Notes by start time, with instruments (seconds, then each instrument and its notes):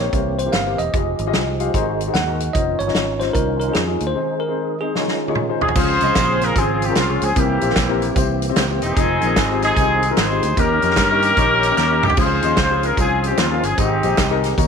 Already playing: tonewheel organ D#3 A#3 C4 G4, tine electric piano C#5
0.00 fingered electric bass A#1
0.13 fingered electric bass C2, grand piano C3 E4 G4 A#4 C5, tonewheel organ E3 C4, kick, closed hi-hat
0.39 tine electric piano C5, closed hi-hat
0.46 grand piano E4 G4 A#4 C5
0.52 fingered electric bass G1, tine electric piano F5, snare, closed hi-hat
0.66 grand piano E4 G4 A#4 C5
0.79 fingered electric bass E1, tine electric piano D#5, closed hi-hat
0.93 fingered electric bass F1, tonewheel organ F3 G#3 D#4, grand piano F4 G4 G#4 D#5, kick, closed hi-hat
1.19 fingered electric bass G#1, closed hi-hat
1.27 grand piano F4 G4 G#4 D#5
1.34 fingered electric bass C2, snare, closed hi-hat
1.60 grand piano F4 G4 G#4 F5, closed hi-hat
1.74 fingered electric bass G#1, grand piano G#2 D#4 F#4 G#4 C5, tonewheel organ D#3 D#4 F#4, kick, closed hi-hat
2.00 closed hi-hat
2.07 grand piano D#4 F#4 G#4 C5
2.14 fingered electric bass D#2, tine electric piano F#5, snare, closed hi-hat
2.27 grand piano D#4 F#4 G#4 A#4
2.40 closed hi-hat
2.53 fingered electric bass F1, grand piano C#4 D#4 F4 C5, tonewheel organ C#4 F4, tine electric piano D#5, kick, closed hi-hat
2.79 fingered electric bass G1, tine electric piano C#5, closed hi-hat
2.87 grand piano C#4 D#4 F4 D#5, snare
2.95 fingered electric bass G#1, snare, closed hi-hat
3.20 grand piano C#4 D#4 F4 C5, tine electric piano C5, snare, closed hi-hat
3.33 fingered electric bass C2, grand piano C#4 D#4 F4 C5, tine electric piano A#4, kick, closed hi-hat
3.60 tine electric piano A#4, closed hi-hat
3.67 grand piano C#4 D#4 F4 C5
3.74 fingered electric bass F2, tine electric piano G#4, snare, closed hi-hat
3.87 grand piano C#4 D#4 F4 G#4
4.00 fingered electric bass D2, closed hi-hat
4.07 tine electric piano C5
4.15 grand piano D#3 C4 D#4 G#4 C5, tonewheel organ G#3 G#4
4.40 tine electric piano A#4
4.48 grand piano C4 D#4 G#4 C5
4.81 grand piano C4 D#4 G#4 C5, tine electric piano G#4
4.95 grand piano D#3 D#4 F4 G#4 C#5, tonewheel organ G#3 C#4 F4, snare
5.08 snare
5.28 grand piano D#4 F4 G#4 C#5, high tom
5.35 mid tom
5.49 grand piano D#4 F4 G#4 C5
5.61 horn section G#4, floor tom
5.69 floor tom
5.75 fingered electric bass C#2, tonewheel organ C#3 F3 C4 G#4, grand piano C#3 C#4 F4 G#4 C5, horn section F4 G#4 C5, kick, crash, tambourine
6.01 fingered electric bass C2, grand piano C#4 F4 G#4 D#5, closed hi-hat, tambourine
6.15 fingered electric bass A#1, kick, snare, clap, closed hi-hat, tambourine
6.29 grand piano C#4 F4 G#4 C5
6.41 horn section A#4, snare, closed hi-hat, tambourine
6.56 fingered electric bass G#1, horn section C4 F4 G#4, grand piano C#4 F4 G#4 C5, kick, closed hi-hat, tambourine
6.82 horn section G4, closed hi-hat, tambourine
6.89 grand piano C#4 F4 G#4 A#4
6.95 fingered electric bass C2, horn section F4, snare, clap, closed hi-hat, tambourine
7.09 grand piano C#4 F4 G#4 C#5
7.22 fingered electric bass C#2, horn section G#4, closed hi-hat, tambourine
7.36 fingered electric bass C2, grand piano C3 C4 E4 G4 A#4, tonewheel organ E3 A#3 C4 G4, horn section A#3 E4 G4, kick, closed hi-hat, tambourine
7.61 fingered electric bass A#1, grand piano C4 E4 G4 C5, closed hi-hat, tambourine
7.70 snare
7.76 fingered electric bass A#1, kick, snare, clap, closed hi-hat, tambourine
7.89 grand piano C4 E4 G4 A#4
8.02 closed hi-hat, tambourine
8.16 fingered electric bass C2, grand piano C4 E4 G4 C5, kick, closed hi-hat, tambourine
8.42 closed hi-hat, tambourine
8.49 grand piano C4 E4 G4 C5
8.56 fingered electric bass C#2, snare, clap, closed hi-hat, tambourine
8.70 grand piano C4 E4 G4 C5
8.82 fingered electric bass E1, horn section C4 D#4 G#4, closed hi-hat, tambourine
8.96 fingered electric bass F1, tonewheel organ D#3 G#3 F4, grand piano C4 D#4 F4 G#4, kick, closed hi-hat, tambourine
9.21 fingered electric bass A#1, grand piano C4 D#4 F4 A#4, closed hi-hat, tambourine
9.36 fingered electric bass G#1, kick, snare, clap, closed hi-hat, tambourine
9.50 grand piano C4 D#4 F4 G4
9.62 horn section C4 D#4 G#4, snare, closed hi-hat, tambourine
9.77 fingered electric bass C2, grand piano C4 D#4 F4 G4, kick, closed hi-hat, tambourine
10.03 closed hi-hat, tambourine
10.10 grand piano C4 D#4 F4 A#4
10.17 fingered electric bass G#1, horn section D#4 G#4 C5, snare, clap, closed hi-hat, tambourine
10.30 grand piano C4 D#4 F4 G4
10.43 fingered electric bass D2, closed hi-hat, tambourine
10.57 fingered electric bass D#2, grand piano D#3 C#4 D#4 G4 A#4, tonewheel organ A#3 D#4 G4, horn section C#4 G4 A#4, kick, closed hi-hat, tambourine
10.82 fingered electric bass F2, grand piano C#4 D#4 G4 A#4, closed hi-hat, tambourine
10.90 snare
10.96 fingered electric bass G2, kick, snare, clap, closed hi-hat, tambourine
11.10 grand piano C#4 D#4 G4 A#4
11.22 closed hi-hat, tambourine
11.37 fingered electric bass A#1, grand piano C#4 D#4 G4 C#5, kick, closed hi-hat, tambourine
11.63 closed hi-hat, tambourine
11.69 grand piano C#4 D#4 G4 A#4
11.77 fingered electric bass D#2, snare, clap, tambourine
11.90 grand piano C#4 D#4 G4 A#4
12.03 fingered electric bass C2, horn section G4, mid tom, tambourine
12.10 floor tom
12.17 fingered electric bass C#2, grand piano C#3 C#4 F4 G#4 C5, tonewheel organ F3 C4 G#4, horn section F4 G#4 C5, kick, crash, tambourine
12.42 fingered electric bass D#2, grand piano C#4 F4 G#4 D#5, closed hi-hat, tambourine
12.57 fingered electric bass C#2, kick, snare, clap, closed hi-hat, tambourine
12.70 grand piano C#4 F4 G#4 C5
12.83 horn section A#4, closed hi-hat, tambourine
12.97 fingered electric bass C2, horn section C4 F4 G#4, grand piano C#4 F4 G#4 C5, kick, closed hi-hat, tambourine
13.24 horn section G4, closed hi-hat, tambourine
13.31 grand piano C#4 F4 G#4 C5
13.37 fingered electric bass D#2, horn section F4, snare, clap, closed hi-hat, tambourine
13.51 grand piano C#4 F4 G#4 A#4
13.63 fingered electric bass G1, horn section G#4, closed hi-hat, tambourine
13.78 fingered electric bass G#1, grand piano G#2 D#4 G4 G#4 C5, tonewheel organ D#3 G#3 G4, horn section C4 D#4 G4, kick, closed hi-hat, tambourine
14.03 fingered electric bass A#1, grand piano D#4 G4 G#4 C5, closed hi-hat, tambourine
14.18 fingered electric bass C2, kick, snare, clap, closed hi-hat, tambourine
14.30 grand piano D#4 G4 G#4 A#4
14.44 snare, closed hi-hat, tambourine
14.58 fingered electric bass D#2, grand piano D#3 D#4 F#4 A#4 C#5, tonewheel organ A#3 C#4 F#4, kick, closed hi-hat, tambourine